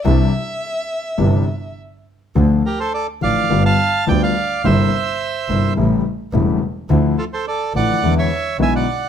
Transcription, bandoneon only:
X:1
M:4/4
L:1/16
Q:1/4=106
K:Cmix
V:1 name="Bandoneon"
z16 | [K:Dm] z2 [GB] [Ac] [Ad]2 [df]3 [fa]3 [dg] [df]3 | [ce]8 z8 | z2 [FA] [Ac] [Ad]2 [d^f]3 [^ce]3 [e^g] [df]3 |]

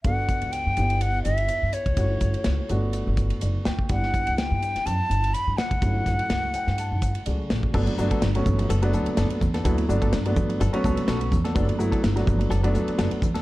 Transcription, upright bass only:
X:1
M:4/4
L:1/16
Q:"Swing 16ths" 1/4=125
K:Glyd
V:1 name="Upright bass" clef=bass
G,,,2 z C,,2 G,, G,,,4 G,,,2 z G,, z C,, | G,,,2 G,,, z C,, z G,,,3 G,,,2 z F,,, z D,, z | G,,,2 z C,,2 G,,2 z F,, z G,,,2 z G,, z C,, | G,,,2 G,,, z C,,2 z G,,2 G,,,2 z C,, z A,,, z |
G,,, z G,,, z G,,,2 G,,,2 F,,,2 D,, z F,,, z E,,2 | D,,2 G,,,2 G,,2 G,,2 G,,, z C,, z B,,,2 E,,2 | G,,, z G,,, z G,,,2 G,,,2 F,,,2 D,, z F,,, z E,,2 |]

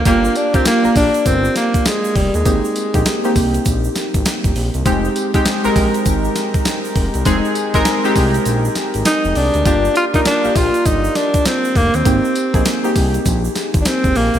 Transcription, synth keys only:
X:1
M:4/4
L:1/16
Q:"Swing 16ths" 1/4=100
K:Gphr
V:1 name="Synth keys"
[B,DFG]3 [B,DFG]2 [B,DFB]6- [B,DFB] z4 | [B,CEG]3 [B,CEG]2 [B,CEG]6- [B,CEG] z4 | [A,CEG]3 [A,CEG]2 [A,CEB]6- [A,CEB] z4 | [A,CEA]3 [A,CEB]2 [A,CEG]6- [A,CEG] z4 |
[B,DFG]3 [B,DFB]2 [B,FGd]6- [B,FGd] z4 | [B,CEG]3 [B,CEA]2 [B,CEG]6- [B,CEG] z4 |]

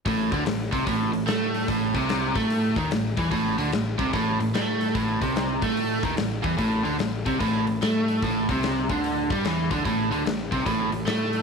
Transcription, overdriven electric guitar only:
X:1
M:4/4
L:1/8
Q:"Swing" 1/4=147
K:Am
V:1 name="Overdriven electric guitar" clef=bass
A,, D, A,, C, A,, A,, A,2 | A,, C,2 A,2 ^D, A,, E, | A,, D, A,, C, A,, A,, A,2 | A,, C,2 A,2 ^D, A,, E, |
A,, D, A,, C, A,, A,, A,2 | A,, C,2 D,2 G, E, D, | A,, D, A,, C, A,, A,, A,2 |]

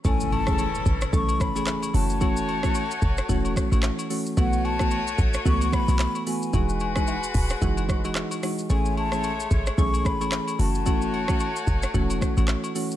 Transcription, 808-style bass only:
X:1
M:4/4
L:1/16
Q:"Swing 16ths" 1/4=111
K:Alyd
V:1 name="808-style bass" clef=bass
A,,,6 G,,,2 B,,,3 A,,,2 z F,,,2- | F,,,6 F,,,2 E,,,3 A,,,2 z3 | B,,,6 A,,,2 C,,3 B,,,2 z3 | E,,,6 D,,,2 F,,,3 E,,,2 z3 |
A,,,6 G,,,2 B,,,3 A,,,2 z F,,,2- | F,,,6 F,,,2 E,,,3 A,,,2 z3 |]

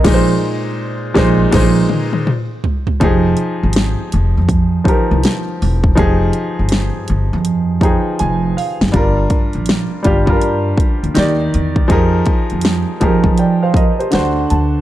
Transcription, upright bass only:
X:1
M:4/4
L:1/16
Q:"Swing 16ths" 1/4=81
K:Fdor
V:1 name="Upright bass" clef=bass
B,,,2 z4 B,,,2 B,,,2 z6 | F,,,2 z A,,,2 z F,,, F,,3 z C,, z2 =E,,,2 | F,,,2 z G,,,2 z G,,, F,,4 z F,,,2 z _G,,, | G,,,2 z B,,,2 z G,,, G,,3 z D,, E,,2 =E,,2 |
F,,2 z F,,2 z F,, F,4 z D,,2 D,,2 |]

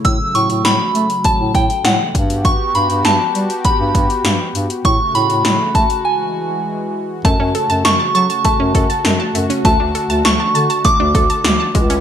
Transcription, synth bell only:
X:1
M:4/4
L:1/16
Q:1/4=100
K:Amix
V:1 name="Synth bell"
e'2 c'2 b4 a2 g2 f3 z | c'2 b2 a4 b4 z4 | c'2 b4 a2 ^g6 z2 | [K:F#m] a4 c'2 c'2 a6 z2 |
a4 c'4 d'6 z2 |]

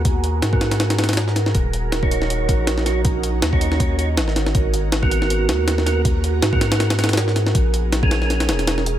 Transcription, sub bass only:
X:1
M:4/4
L:1/8
Q:"Swing 16ths" 1/4=160
K:G#m
V:1 name="Sub bass" clef=bass
D,,2 G,,6 | D,,,4- D,,, A,,,3- | A,,,2 D,,4 G,,,2 | G,,,4- G,,, D,,3- |
D,,2 G,,6 | A,,,4- A,,, E,,,3 |]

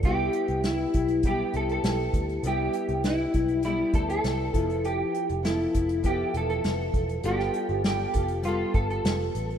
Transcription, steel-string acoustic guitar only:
X:1
M:4/4
L:1/8
Q:1/4=100
K:C
V:1 name="Steel-string acoustic guitar"
[G,B,EG]4 [G,B,EG]4 | [G,B,EG]4 [G,B,EG]3 [F,B,EA]- | [F,B,EA]2 [F,B,EA]2 [F,B,EA]4 | [G,B,FA]2 [G,B,FA] [B,FA] [G,B,FA]4 |]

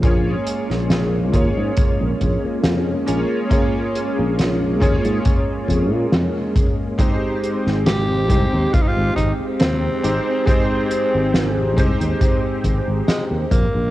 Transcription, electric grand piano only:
X:1
M:4/4
L:1/8
Q:"Swing 16ths" 1/4=69
K:Ab
V:1 name="Electric grand piano"
[B,DFAd]3 [B,DFAd]4 [B,DFAd] | [B,DFAd]3 [B,DFAd]4- [B,DFAd] | [A,CEGc]3 [A,CEGc]4 [A,CEGc] | [A,CEGc]3 [A,CEGc]4 z |]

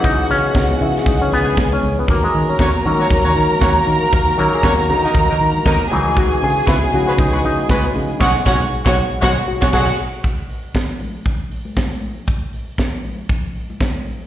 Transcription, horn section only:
X:1
M:4/4
L:1/16
Q:"Swing 16ths" 1/4=118
K:B
V:1 name="Horn section"
z16 | z4 [A,CFc] z2 [A,CFc] z [A,CFc] z2 [A,CFc]2 z2 | z4 [A,CFc] z2 [F,A,DA] z [F,A,DA] z2 [F,A,DA]2 z2 | z4 [G,B,FB] z2 [G,B,FB] z [G,B,FB] z2 [G,B,FB]2 z2 |
[G,CFc]2 [G,CFc]2 z [G,CFc]2 z [G,CFc]2 z [G,CFc] [G,CFc]2 z2 | z16 | z16 |]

